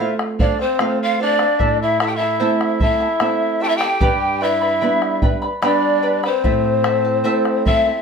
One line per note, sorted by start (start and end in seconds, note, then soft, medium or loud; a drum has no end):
0.00 0.64 A3 soft
0.00 0.64 C4 soft
0.00 0.13 E4 medium
0.00 0.64 F4 medium
0.00 0.38 A4 medium
0.00 0.39 C5 medium
0.00 0.13 E5 medium
0.00 0.40 F5 medium
0.19 bombo rim medium
0.39 0.59 D4 medium
0.39 0.60 A4 medium
0.39 0.59 C5 medium
0.39 0.59 D5 medium
0.39 0.58 F5 medium
0.39 bombo low medium
0.59 0.97 C4 medium
0.59 0.79 C5 soft
0.59 0.98 C5 medium
0.59 0.80 F5 soft
0.59 bombo rim soft
0.79 1.44 A3 soft
0.79 1.44 C4 soft
0.79 1.44 F4 medium
0.79 1.18 A4 medium
0.79 1.19 C5 medium
0.79 1.19 F5 medium
0.79 bombo rim medium
1.01 1.19 F4 medium
1.01 1.20 F5 medium
1.19 1.77 D4 medium
1.19 1.40 A4 medium
1.19 1.39 C5 medium
1.19 1.77 D5 loud
1.19 1.38 F5 medium
1.39 1.60 C5 soft
1.39 1.58 F5 medium
1.39 bombo rim medium
1.59 2.39 A2 medium
1.59 1.99 E4 medium
1.59 2.00 A4 medium
1.59 1.99 E5 medium
1.59 2.01 A5 medium
1.59 bombo rim soft
1.59 bombo low medium
1.82 2.00 E4 medium
1.82 2.00 E5 medium
2.00 2.20 E4 medium
2.00 2.10 E4 medium
2.00 2.19 A4 medium
2.00 2.20 E5 medium
2.00 2.08 E5 medium
2.00 2.18 A5 medium
2.00 bombo rim medium
2.06 2.18 G4 medium
2.06 2.17 G5 medium
2.15 2.82 E4 medium
2.15 2.81 E5 medium
2.15 2.40 A5 medium
2.20 2.39 E4 soft
2.20 2.39 A4 soft
2.20 bombo rim soft
2.40 3.05 A3 soft
2.40 3.05 C4 soft
2.40 2.79 E4 medium
2.40 3.06 E4 medium
2.40 2.80 A4 medium
2.40 2.80 C5 medium
2.40 2.79 E5 medium
2.40 2.80 A5 medium
2.61 bombo rim medium
2.80 3.00 E4 medium
2.80 3.64 E4 medium
2.80 3.00 A4 medium
2.80 3.01 E5 medium
2.80 3.64 E5 medium
2.80 2.99 A5 medium
2.80 bombo low medium
3.00 3.20 E4 soft
3.00 3.20 A4 soft
3.00 3.20 A5 soft
3.00 bombo rim soft
3.20 3.85 A3 soft
3.20 3.86 C4 soft
3.20 3.59 E4 medium
3.20 3.86 E4 medium
3.20 3.60 A4 medium
3.20 3.59 E5 medium
3.20 3.60 A5 medium
3.20 bombo rim medium
3.60 3.81 E4 medium
3.60 3.69 G4 medium
3.60 3.81 A4 medium
3.60 3.81 E5 medium
3.60 3.70 G5 loud
3.60 3.80 A5 medium
3.68 3.78 E4 medium
3.68 3.78 E5 medium
3.77 4.44 G4 medium
3.77 4.44 G5 loud
3.81 4.01 E4 soft
3.81 4.01 A4 soft
3.81 4.01 A5 medium
3.81 bombo rim medium
4.00 4.80 G2 medium
4.00 4.41 G4 medium
4.00 4.40 B4 medium
4.00 4.41 D5 medium
4.00 4.40 G5 medium
4.00 4.41 B5 medium
4.00 bombo rim soft
4.00 bombo low medium
4.41 5.37 E4 medium
4.41 4.61 B4 medium
4.41 4.61 D5 medium
4.41 5.37 E5 medium
4.41 4.62 G5 medium
4.41 4.60 B5 medium
4.61 4.80 B4 soft
4.61 4.81 D5 medium
4.61 4.82 B5 medium
4.61 bombo rim soft
4.81 5.47 G3 soft
4.81 5.47 B3 soft
4.81 5.48 D4 medium
4.81 5.22 B4 medium
4.81 5.22 D5 medium
4.81 5.21 G5 medium
4.81 5.22 B5 medium
5.02 bombo rim medium
5.22 5.42 B4 medium
5.22 5.41 D5 medium
5.22 5.43 G5 medium
5.22 5.41 B5 medium
5.22 bombo low medium
5.42 5.61 B4 soft
5.42 5.62 D5 soft
5.42 5.62 B5 medium
5.42 bombo rim soft
5.62 6.27 G3 medium
5.62 6.28 B3 soft
5.62 6.28 D4 medium
5.62 6.03 G4 medium
5.62 6.02 B4 medium
5.62 6.02 D5 medium
5.62 6.20 D5 medium
5.62 6.01 G5 medium
5.62 6.03 B5 medium
5.62 bombo rim medium
5.66 6.21 D4 medium
6.02 6.23 B4 medium
6.02 6.23 D5 medium
6.02 6.23 G5 medium
6.02 6.22 B5 medium
6.23 8.02 C4 medium
6.23 6.44 B4 soft
6.23 7.62 C5 medium
6.23 6.44 D5 soft
6.23 6.44 B5 medium
6.23 bombo rim medium
6.44 7.23 A2 medium
6.44 6.84 E4 medium
6.44 6.84 A4 medium
6.44 6.83 E5 medium
6.44 6.85 A5 medium
6.44 bombo rim soft
6.44 bombo low medium
6.65 bombo rim soft
6.84 7.04 E4 medium
6.84 7.04 A4 medium
6.84 7.05 E5 medium
6.84 7.03 A5 medium
6.84 bombo rim medium
7.05 7.24 E4 soft
7.05 7.24 A4 soft
7.05 7.24 A5 medium
7.24 7.90 A3 medium
7.24 7.90 C4 soft
7.24 7.65 E4 loud
7.24 7.90 E4 soft
7.24 7.65 A4 loud
7.24 7.65 C5 medium
7.24 7.64 E5 medium
7.24 7.66 A5 loud
7.45 bombo rim medium
7.65 7.86 E4 medium
7.65 7.85 A4 medium
7.65 7.86 E5 medium
7.65 8.02 E5 medium
7.65 7.84 A5 medium
7.65 bombo low medium
7.85 8.02 E4 soft
7.85 8.02 A4 medium
7.85 8.02 A5 medium